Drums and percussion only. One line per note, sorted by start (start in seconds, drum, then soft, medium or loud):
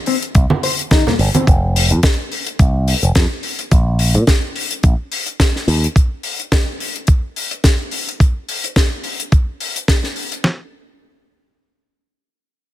0.06 open hi-hat medium
0.22 closed hi-hat medium
0.35 kick loud
0.35 closed hi-hat medium
0.50 high conga medium
0.63 open hi-hat loud
0.79 closed hi-hat medium
0.91 kick loud
0.91 snare loud
0.91 closed hi-hat medium
0.91 high conga medium
1.07 snare soft
1.07 low conga medium
1.19 open hi-hat medium
1.34 closed hi-hat medium
1.34 high conga medium
1.47 kick loud
1.47 closed hi-hat medium
1.76 open hi-hat loud
1.90 closed hi-hat medium
2.03 kick loud
2.03 snare loud
2.03 closed hi-hat medium
2.32 open hi-hat medium
2.47 closed hi-hat medium
2.59 kick loud
2.59 closed hi-hat medium
2.88 open hi-hat loud
3.03 closed hi-hat medium
3.15 kick loud
3.15 snare loud
3.15 closed hi-hat medium
3.43 open hi-hat medium
3.59 closed hi-hat medium
3.71 kick loud
3.71 closed hi-hat medium
3.99 open hi-hat loud
4.14 closed hi-hat medium
4.27 kick loud
4.27 snare loud
4.27 closed hi-hat medium
4.56 open hi-hat medium
4.71 closed hi-hat medium
4.83 kick loud
4.83 closed hi-hat medium
5.12 open hi-hat loud
5.26 closed hi-hat medium
5.40 kick loud
5.40 snare loud
5.40 closed hi-hat medium
5.56 snare soft
5.68 open hi-hat medium
5.84 closed hi-hat medium
5.96 kick loud
5.96 closed hi-hat medium
6.23 open hi-hat medium
6.40 closed hi-hat medium
6.52 kick loud
6.52 snare loud
6.52 closed hi-hat medium
6.80 open hi-hat medium
6.96 closed hi-hat medium
7.07 kick loud
7.07 closed hi-hat medium
7.36 open hi-hat medium
7.51 closed hi-hat medium
7.64 kick loud
7.64 snare medium
7.64 closed hi-hat medium
7.91 open hi-hat medium
8.09 closed hi-hat medium
8.20 kick loud
8.20 closed hi-hat medium
8.49 open hi-hat medium
8.64 closed hi-hat medium
8.76 kick loud
8.76 snare loud
8.76 closed hi-hat medium
9.04 open hi-hat medium
9.20 closed hi-hat medium
9.32 kick loud
9.32 closed hi-hat medium
9.60 open hi-hat medium
9.76 closed hi-hat medium
9.88 kick loud
9.88 snare loud
9.88 closed hi-hat medium
10.04 snare soft
10.16 open hi-hat medium
10.32 closed hi-hat medium
10.44 snare medium